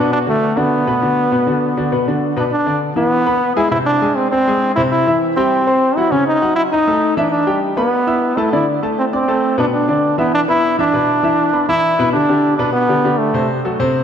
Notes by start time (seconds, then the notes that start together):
Already playing: B2 B3 D4 B4
0.13 D4
0.26 D3 A3 D4 F#4
0.57 D3 B3 D4 F#4
0.87 B2 B3 B4
1.02 D3 D4 F#4
1.32 B2 B3 B4
1.47 D3 D4 F#4
1.77 D3 D4 F#4
1.92 B2 B3 B4
2.08 D3 D4 F#4
2.36 B2 B3 D4 B4
2.52 D4
2.66 D3 D4 D5
2.96 E3 B3 E4 E5
3.26 B3 B4 B5
3.56 G#3 E4 G#4 G#5
3.71 C3 C4 E4 C5
3.86 D4
4.02 G#3 G#4 G#5
4.15 C4
4.31 C4 C5 C6
4.47 G#3 G#4 G#5
4.75 C3 C4 E4 C5
4.91 E4
5.07 E3 E4 E5
5.36 G3 C4 G4 G5
5.67 C4 C5 C6
5.96 F#3 E4 F#4 F#5
6.11 C#3 C#4 C#5
6.27 D#4
6.42 F#3 F#4 F#5
6.56 E4
6.72 D#4 D#5 D#6
6.87 A3 A4 A5
7.17 E3 D4 E4 E5
7.31 D4
7.47 G3 G4 G5
7.77 B3 B4 B5
8.07 E4 E5 E6
8.37 A3 E4 A4 A5
8.53 D3 D4 E4 D5
8.82 A3 A4 A5
8.98 C4
9.13 C4 D4 D5 D6
9.28 A3 A4 A5
9.58 B2 B3 D4 B4
9.73 D4
9.88 D3 D4 D5
10.18 E3 B3 E4 E5
10.34 D4
10.48 B3 E4 B4 B5
10.79 E3 D4 E4 E5
10.93 B2 B3 B4
11.23 E3 E4 E5
11.53 B3 B4 B5
11.69 E3 E4 E5
11.99 B2 B3 B4
12.13 D3 D4 G4
12.29 D3 D4 G4
12.57 B2 B3 D4 B4
12.73 B3
12.88 D3 D4 G4
13.04 D3 D4 G4
13.18 A3
13.34 C3 C4 C5
13.65 F#3 F#4 A4
13.80 C3 C4 C5